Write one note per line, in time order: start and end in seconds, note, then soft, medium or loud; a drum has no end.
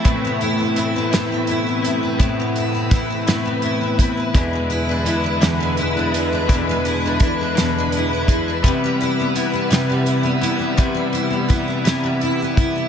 0.00 4.31 C3 medium
0.00 0.13 F3 medium
0.00 0.24 A3 medium
0.00 4.31 A3 medium
0.00 0.28 C4 medium
0.00 0.41 E4 medium
0.00 4.31 E4 medium
0.04 0.77 A2 loud
0.04 1.13 A2 medium
0.04 0.75 E3 medium
0.04 0.76 B3 loud
0.04 0.76 C4 loud
0.04 0.78 E4 medium
0.04 12.88 B4 medium
0.04 kick loud
0.04 closed hi-hat medium
0.25 1.32 B3 medium
0.41 0.77 E4 medium
0.41 closed hi-hat soft
0.61 0.95 C4 medium
0.75 1.11 E3 medium
0.75 1.11 B3 medium
0.75 1.11 C4 medium
0.75 1.49 E4 medium
0.75 1.10 E4 medium
0.75 closed hi-hat medium
0.96 1.65 C4 medium
1.11 1.84 A2 medium
1.11 2.20 A2 medium
1.11 2.19 E3 medium
1.11 1.85 B3 medium
1.11 1.83 C4 medium
1.11 1.82 E4 medium
1.11 snare loud
1.11 closed hi-hat medium
1.32 2.39 B3 medium
1.47 1.85 E4 medium
1.47 closed hi-hat medium
1.67 2.02 C4 medium
1.82 2.19 B3 soft
1.82 2.19 C4 medium
1.82 2.19 E4 medium
1.82 2.58 E4 medium
1.82 closed hi-hat medium
2.03 2.73 C4 medium
2.19 2.91 A2 medium
2.19 3.27 A2 medium
2.19 2.89 E3 medium
2.19 2.91 B3 medium
2.19 2.91 C4 loud
2.19 2.92 E4 loud
2.19 kick loud
2.19 closed hi-hat medium
2.40 3.45 B3 medium
2.56 2.93 E4 medium
2.56 closed hi-hat medium
2.75 3.09 C4 medium
2.90 3.26 E3 medium
2.90 3.26 B3 medium
2.90 3.26 C4 medium
2.90 3.25 E4 medium
2.90 3.63 E4 medium
2.90 kick loud
2.90 snare soft
2.90 closed hi-hat medium
3.10 3.80 C4 medium
3.27 4.35 A2 medium
3.27 3.99 A2 medium
3.27 4.34 E3 medium
3.27 4.00 B3 medium
3.27 3.98 C4 medium
3.27 3.97 E4 medium
3.27 snare loud
3.27 closed hi-hat medium
3.45 4.53 B3 medium
3.62 3.98 E4 medium
3.62 closed hi-hat soft
3.81 4.16 C4 medium
3.98 4.35 B3 soft
3.98 4.35 C4 soft
3.98 4.34 E4 soft
3.98 4.69 E4 medium
3.98 kick loud
3.98 closed hi-hat medium
4.17 4.42 C4 medium
4.34 5.06 E2 medium
4.34 5.40 E2 medium
4.34 5.06 B2 medium
4.34 8.60 D3 medium
4.34 5.05 E3 medium
4.34 5.05 G#3 medium
4.34 8.61 G#3 medium
4.34 5.06 D4 medium
4.34 6.48 E4 medium
4.34 5.07 E4 medium
4.34 kick loud
4.34 closed hi-hat medium
4.53 5.59 G#3 medium
4.70 5.05 E4 medium
4.70 closed hi-hat soft
4.89 5.22 D4 medium
5.05 5.40 E3 medium
5.05 5.40 G#3 medium
5.05 5.40 D4 medium
5.05 5.78 E4 medium
5.05 5.39 E4 medium
5.05 closed hi-hat medium
5.24 5.95 D4 medium
5.41 6.49 E2 medium
5.41 6.14 E2 medium
5.41 6.13 B2 medium
5.41 6.14 E3 medium
5.41 6.13 G#3 medium
5.41 6.12 D4 medium
5.41 6.11 E4 medium
5.41 snare loud
5.41 closed hi-hat loud
5.60 6.67 G#3 medium
5.77 6.14 E4 medium
5.77 closed hi-hat soft
5.97 6.31 D4 medium
6.12 6.47 E3 soft
6.12 6.48 G#3 soft
6.12 6.48 D4 soft
6.12 6.48 E4 medium
6.12 6.86 E4 medium
6.12 closed hi-hat medium
6.33 7.04 D4 medium
6.48 7.20 E2 medium
6.48 7.20 B2 medium
6.48 7.19 E3 medium
6.48 7.20 G#3 medium
6.48 7.21 D4 loud
6.48 8.62 D4 medium
6.48 7.22 E4 loud
6.48 kick loud
6.48 closed hi-hat medium
6.52 7.57 E2 medium
6.69 7.75 G#3 medium
6.85 7.22 E4 medium
6.85 closed hi-hat medium
7.06 7.40 D4 medium
7.20 7.55 E3 medium
7.20 7.55 G#3 medium
7.20 7.54 D4 medium
7.20 7.54 E4 medium
7.20 7.97 E4 medium
7.20 kick loud
7.20 snare soft
7.20 closed hi-hat medium
7.41 8.11 D4 medium
7.55 8.28 E2 medium
7.55 8.72 E2 medium
7.55 8.28 B2 medium
7.55 8.29 E3 medium
7.55 8.27 G#3 medium
7.55 8.26 D4 medium
7.55 8.26 E4 medium
7.55 snare loud
7.55 closed hi-hat medium
7.78 8.73 G#3 medium
7.92 closed hi-hat medium
7.97 8.30 E4 medium
8.13 8.47 D4 medium
8.26 8.62 E3 soft
8.26 8.63 G#3 medium
8.26 8.63 D4 medium
8.26 8.63 E4 soft
8.26 kick medium
8.26 closed hi-hat medium
8.30 9.01 E4 medium
8.48 8.72 D4 medium
8.63 9.35 C3 medium
8.63 12.88 C3 medium
8.63 9.69 C3 medium
8.63 9.34 E3 loud
8.63 9.34 G3 medium
8.63 12.88 G3 medium
8.63 9.35 B3 loud
8.63 9.37 E4 loud
8.63 12.88 E4 medium
8.63 kick loud
8.63 closed hi-hat medium
8.84 9.88 G3 medium
9.01 9.35 E4 medium
9.01 closed hi-hat soft
9.20 9.52 B3 medium
9.34 9.71 E3 medium
9.34 9.70 G3 medium
9.34 9.70 B3 medium
9.34 10.06 E4 medium
9.34 9.69 E4 medium
9.34 closed hi-hat medium
9.53 10.22 B3 medium
9.70 10.76 C3 medium
9.70 10.43 C3 medium
9.70 10.77 E3 medium
9.70 10.43 G3 medium
9.70 10.42 B3 medium
9.70 10.41 E4 medium
9.70 snare loud
9.70 closed hi-hat medium
9.90 10.93 G3 medium
10.06 10.41 E4 medium
10.06 closed hi-hat soft
10.23 10.58 B3 medium
10.41 10.77 G3 soft
10.41 10.78 B3 medium
10.41 11.12 E4 medium
10.41 10.78 E4 medium
10.41 closed hi-hat medium
10.59 11.29 B3 medium
10.77 11.49 C3 medium
10.77 11.84 C3 medium
10.77 11.48 E3 medium
10.77 11.48 G3 medium
10.77 11.49 B3 medium
10.77 11.51 E4 medium
10.77 kick loud
10.77 closed hi-hat medium
10.94 12.02 G3 medium
11.13 11.48 E4 medium
11.13 closed hi-hat medium
11.30 11.67 B3 medium
11.48 11.84 E3 medium
11.48 11.84 G3 medium
11.48 11.84 B3 medium
11.48 12.22 E4 medium
11.48 11.83 E4 medium
11.48 kick loud
11.48 snare soft
11.48 closed hi-hat medium
11.68 12.39 B3 medium
11.84 12.88 C3 medium
11.84 12.57 C3 medium
11.84 12.88 E3 medium
11.84 12.57 G3 medium
11.84 12.56 B3 medium
11.84 12.55 E4 medium
11.84 snare loud
11.84 closed hi-hat loud
12.03 12.88 G3 medium
12.21 12.59 E4 medium
12.21 closed hi-hat soft
12.42 12.74 B3 medium
12.56 12.88 G3 soft
12.56 12.88 B3 soft
12.56 12.88 E4 medium
12.56 kick loud
12.56 closed hi-hat medium
12.76 12.88 B3 medium